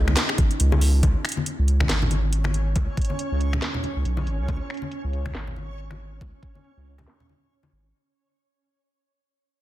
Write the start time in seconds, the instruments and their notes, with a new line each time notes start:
Already playing: sub bass C#2, analog synth pad C#4 D#4
0.08 finger snap, high conga
0.17 snare, clap, closed hi-hat
0.29 finger snap, high bongo
0.38 kick, closed hi-hat, high conga
0.51 closed hi-hat
0.60 sub bass C#2, closed hi-hat
0.72 high bongo, high conga
0.81 open hi-hat
1.03 sub bass C#2, synth texture C#4 C#5, kick, closed hi-hat, high conga
1.25 finger snap, closed hi-hat
1.29 closed hi-hat
1.32 closed hi-hat
1.37 high conga
1.46 closed hi-hat
1.59 sub bass C#2
1.68 closed hi-hat
1.80 finger snap, high conga, low conga
1.89 sub bass G#1, snare, closed hi-hat
2.02 low conga
2.11 closed hi-hat, high conga
2.33 closed hi-hat
2.44 finger snap, high conga
2.54 closed hi-hat
2.76 sub bass C#2, kick, closed hi-hat, high conga
2.97 kick, closed hi-hat
3.01 closed hi-hat
3.05 closed hi-hat
3.10 high conga
3.19 closed hi-hat
3.31 sub bass C#2
3.41 closed hi-hat
3.53 finger snap, high conga, low conga
3.62 snare, closed hi-hat
3.74 low conga
3.83 closed hi-hat, high conga
3.96 sub bass C#2
4.05 sub bass B1, closed hi-hat
4.17 high conga
4.27 sub bass G#1, closed hi-hat
4.39 sub bass C#2
4.48 sub bass C#2, kick, closed hi-hat, high conga
4.70 finger snap, closed hi-hat
4.74 closed hi-hat
4.77 closed hi-hat
4.82 high conga
4.91 closed hi-hat
5.04 sub bass C#2
5.13 closed hi-hat
5.25 finger snap, high conga, low conga
5.35 sub bass G#1, snare, closed hi-hat
5.47 low conga
5.56 closed hi-hat, high conga
5.78 closed hi-hat
5.91 finger snap, high conga
6.00 closed hi-hat
6.21 sub bass C#2, kick, closed hi-hat, high conga
6.43 kick, closed hi-hat
6.47 closed hi-hat
6.50 closed hi-hat
6.55 high conga
6.64 closed hi-hat
6.77 sub bass C#2
6.86 closed hi-hat
6.98 finger snap, high conga, low conga
7.08 snare
7.20 low conga
7.29 high conga
7.63 high conga
7.72 sub bass G#1